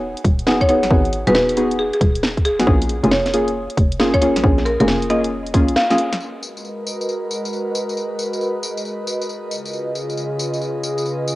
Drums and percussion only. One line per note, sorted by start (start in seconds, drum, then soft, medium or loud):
0.17 closed hi-hat medium
0.24 kick loud
0.24 open hi-hat loud
0.39 closed hi-hat medium
0.47 snare loud
0.61 kick medium
0.61 closed hi-hat soft
0.69 open hi-hat loud
0.83 snare medium
0.83 closed hi-hat medium
0.91 kick loud
1.05 closed hi-hat soft
1.13 open hi-hat loud
1.27 closed hi-hat medium
1.35 snare loud
1.49 open hi-hat medium
1.57 open hi-hat loud
1.71 closed hi-hat medium
1.93 closed hi-hat medium
2.01 kick loud
2.01 open hi-hat loud
2.15 closed hi-hat medium
2.23 snare loud
2.37 kick medium
2.37 closed hi-hat soft
2.45 open hi-hat loud
2.60 snare medium
2.60 closed hi-hat medium
2.67 kick loud
2.82 open hi-hat medium
2.89 open hi-hat loud
3.04 closed hi-hat medium
3.11 snare loud
3.26 snare medium
3.26 closed hi-hat medium
3.34 open hi-hat loud
3.48 closed hi-hat medium
3.70 closed hi-hat medium
3.77 kick loud
3.77 open hi-hat loud
3.92 closed hi-hat medium
4.00 snare loud
4.14 kick medium
4.14 closed hi-hat soft
4.22 open hi-hat loud
4.36 snare medium
4.36 closed hi-hat medium
4.44 kick loud
4.58 snare medium
4.58 closed hi-hat soft
4.66 open hi-hat loud
4.80 closed hi-hat medium
4.88 snare loud
5.02 open hi-hat medium
5.10 open hi-hat loud
5.24 closed hi-hat medium
5.46 closed hi-hat medium
5.54 kick loud
5.54 open hi-hat loud
5.68 closed hi-hat medium
5.76 snare loud
5.90 snare medium
5.90 closed hi-hat soft
5.98 open hi-hat loud
6.13 snare medium
6.13 closed hi-hat medium
6.20 tambourine soft
6.42 tambourine medium
6.57 tambourine soft
6.65 tambourine soft
6.87 tambourine medium
7.01 tambourine soft
7.09 tambourine soft
7.31 tambourine medium
7.45 tambourine soft
7.53 tambourine soft
7.75 tambourine medium
7.89 tambourine soft
7.97 tambourine soft
8.19 tambourine medium
8.33 tambourine soft
8.41 tambourine soft
8.63 tambourine medium
8.77 tambourine soft
8.85 tambourine soft
9.07 tambourine medium
9.21 tambourine soft
9.29 tambourine soft
9.51 tambourine medium
9.65 tambourine soft
9.73 tambourine soft
9.95 tambourine medium
10.10 tambourine soft
10.17 tambourine soft
10.39 tambourine medium
10.54 tambourine soft
10.62 tambourine soft
10.84 tambourine medium
10.98 tambourine soft
11.06 tambourine soft
11.28 tambourine medium